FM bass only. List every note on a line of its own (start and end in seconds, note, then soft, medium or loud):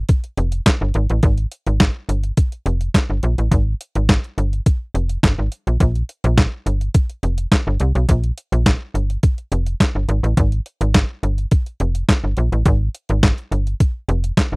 0.37 0.60 F1 medium
0.81 0.92 G1 medium
0.95 1.07 G#1 loud
1.10 1.21 A1 medium
1.23 1.46 G#1 loud
1.67 1.90 G#1 medium
2.09 2.32 G1 medium
2.66 2.89 F1 medium
3.10 3.20 G1 medium
3.23 3.35 A#1 loud
3.38 3.49 A1 medium
3.51 3.74 G#1 loud
3.96 4.18 G#1 medium
4.38 4.60 G1 medium
4.94 5.17 F1 medium
5.23 5.35 G1 medium
5.39 5.49 G#1 medium
5.67 5.78 A#1 medium
5.80 6.03 A#1 loud
6.24 6.47 A#1 loud
6.66 6.89 G1 medium
7.23 7.46 F1 medium
7.67 7.78 G1 medium
7.80 7.92 C2 medium
7.95 8.06 B1 loud
8.09 8.32 A#1 loud
8.52 8.75 A#1 medium
8.94 9.17 G1 medium
9.52 9.75 F1 medium
9.95 10.06 G1 medium
10.09 10.21 G#1 loud
10.23 10.34 A1 loud
10.37 10.60 G#1 loud
10.81 11.04 G#1 medium
11.23 11.46 G1 medium
11.80 12.03 F1 medium
12.24 12.35 G1 medium
12.38 12.50 A#1 loud
12.52 12.63 A1 medium
12.66 12.89 G#1 loud
13.10 13.33 G#1 loud
13.52 13.74 G1 medium
14.09 14.32 F1 loud
14.52 14.56 G1 medium